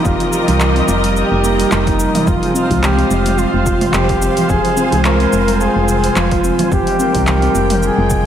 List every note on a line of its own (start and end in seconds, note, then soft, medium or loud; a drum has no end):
0.00 0.16 D#3 medium
0.00 2.27 F3 medium
0.00 0.16 G3 medium
0.00 0.17 A#3 medium
0.00 8.26 F4 medium
0.00 0.18 G4 medium
0.00 2.27 G4 medium
0.00 2.98 A#4 medium
0.00 3.87 D#5 medium
0.05 0.15 F1 loud
0.05 0.89 F4 medium
0.05 kick loud
0.05 shaker soft
0.19 0.29 D#3 medium
0.19 0.29 G3 medium
0.19 0.30 A#3 medium
0.19 0.30 G4 loud
0.19 open hi-hat soft
0.19 darbuka tek medium
0.19 shaker soft
0.30 2.25 D#3 medium
0.30 2.25 G3 medium
0.30 2.26 A#3 medium
0.30 shaker medium
0.34 2.27 G4 medium
0.47 0.82 C2 medium
0.47 0.60 G3 loud
0.47 open hi-hat soft
0.47 darbuka dum medium
0.47 shaker soft
0.60 clap loud
0.60 shaker soft
0.76 0.88 C4 medium
0.76 open hi-hat soft
0.76 darbuka tek soft
0.88 1.23 F1 medium
0.88 darbuka tek medium
0.88 shaker medium
1.03 1.43 G3 medium
1.03 open hi-hat medium
1.03 darbuka ka soft
1.03 shaker soft
1.15 1.73 G4 loud
1.15 shaker soft
1.31 1.65 F1 loud
1.44 1.58 A#3 medium
1.44 shaker medium
1.59 1.70 G3 loud
1.59 open hi-hat medium
1.59 shaker soft
1.71 2.07 F1 loud
1.71 1.86 G3 medium
1.71 2.30 D#4 medium
1.71 clap loud
1.71 shaker medium
1.87 1.98 F3 medium
1.87 kick loud
1.87 open hi-hat soft
1.87 shaker soft
1.99 2.08 G3 medium
1.99 shaker medium
2.14 2.26 C3 medium
2.14 mid tom medium
2.14 open hi-hat medium
2.14 darbuka dum loud
2.14 shaker soft
2.27 2.37 F1 loud
2.27 2.36 F3 medium
2.27 2.83 F4 medium
2.27 kick loud
2.27 shaker soft
2.42 2.52 F3 medium
2.42 2.52 G#3 medium
2.42 2.52 C4 medium
2.42 2.53 G#4 medium
2.42 open hi-hat soft
2.42 darbuka tek medium
2.53 4.60 F3 medium
2.53 2.69 C4 loud
2.53 4.62 C4 medium
2.53 4.62 F5 medium
2.53 shaker medium
2.60 7.83 C5 medium
2.70 3.04 C2 loud
2.70 2.82 G#3 loud
2.70 kick medium
2.70 open hi-hat soft
2.70 darbuka dum loud
2.70 shaker soft
2.83 3.40 G4 loud
2.83 clap medium
2.83 shaker soft
2.98 3.10 C4 medium
2.98 6.72 F5 medium
2.98 open hi-hat soft
3.11 3.46 F1 medium
3.11 darbuka tek medium
3.11 shaker medium
3.25 3.65 G3 medium
3.25 mid tom medium
3.25 open hi-hat medium
3.25 darbuka ka soft
3.25 shaker soft
3.38 3.96 F4 loud
3.38 shaker soft
3.54 3.87 F1 loud
3.66 3.93 C3 medium
3.66 kick loud
3.66 darbuka tek soft
3.66 shaker medium
3.81 mid tom medium
3.81 open hi-hat medium
3.81 darbuka ka medium
3.81 shaker soft
3.94 4.29 F1 medium
3.94 4.20 F3 loud
3.94 4.51 G4 loud
3.94 clap loud
3.94 darbuka ka medium
3.94 shaker soft
4.09 kick loud
4.09 open hi-hat soft
4.21 4.48 C4 medium
4.21 darbuka tek medium
4.21 shaker medium
4.37 open hi-hat medium
4.37 darbuka dum medium
4.37 shaker soft
4.49 4.60 F1 loud
4.49 4.58 F3 medium
4.49 5.07 G#4 loud
4.49 kick loud
4.49 shaker soft
4.63 4.73 F3 medium
4.63 4.74 G#3 medium
4.63 4.74 C4 medium
4.63 4.75 G#4 loud
4.63 open hi-hat soft
4.63 darbuka tek medium
4.75 6.69 F3 medium
4.75 4.92 C4 loud
4.75 6.70 C4 medium
4.75 shaker medium
4.79 6.71 G#5 medium
4.92 5.26 C2 medium
4.92 5.04 G#3 loud
4.92 open hi-hat soft
4.92 darbuka dum medium
4.92 shaker soft
5.05 5.63 A#4 loud
5.05 clap medium
5.05 shaker soft
5.20 5.32 C4 medium
5.20 open hi-hat soft
5.20 darbuka tek soft
5.32 5.68 F1 medium
5.32 darbuka tek medium
5.32 shaker medium
5.48 5.87 G3 medium
5.48 open hi-hat medium
5.48 darbuka ka medium
5.48 shaker soft
5.61 6.17 G#4 loud
5.61 shaker soft
5.76 6.10 F1 loud
5.88 6.15 C3 medium
5.88 shaker medium
6.04 open hi-hat medium
6.04 shaker soft
6.16 6.51 F1 medium
6.16 6.43 F3 loud
6.16 6.68 F4 loud
6.16 clap loud
6.16 shaker soft
6.31 kick loud
6.31 open hi-hat soft
6.44 6.70 C4 medium
6.44 shaker medium
6.59 mid tom medium
6.59 open hi-hat medium
6.59 darbuka dum medium
6.59 shaker soft
6.71 6.82 F1 loud
6.71 8.26 F3 medium
6.71 6.81 F3 medium
6.71 7.24 G4 loud
6.71 kick loud
6.71 shaker soft
6.85 6.96 D#3 medium
6.85 6.96 G3 medium
6.85 6.97 A#3 medium
6.85 6.97 G4 loud
6.85 open hi-hat soft
6.85 darbuka tek medium
6.97 8.26 D#3 medium
6.97 8.26 A#3 medium
6.97 7.14 C4 loud
6.97 shaker medium
7.01 8.26 G5 medium
7.15 7.49 C2 medium
7.15 7.27 G3 loud
7.15 kick medium
7.15 open hi-hat medium
7.15 darbuka dum medium
7.15 shaker soft
7.27 7.79 G4 medium
7.27 clap medium
7.27 shaker soft
7.38 8.26 G5 medium
7.42 7.55 C4 medium
7.42 open hi-hat soft
7.55 7.90 F1 medium
7.55 darbuka tek medium
7.55 shaker medium
7.70 8.10 G3 medium
7.70 mid tom medium
7.70 open hi-hat medium
7.70 darbuka ka soft
7.70 shaker soft
7.83 8.26 G#4 loud
7.83 shaker soft
7.98 8.26 F1 loud
8.10 8.26 C3 medium
8.10 kick loud
8.10 darbuka tek soft
8.10 shaker medium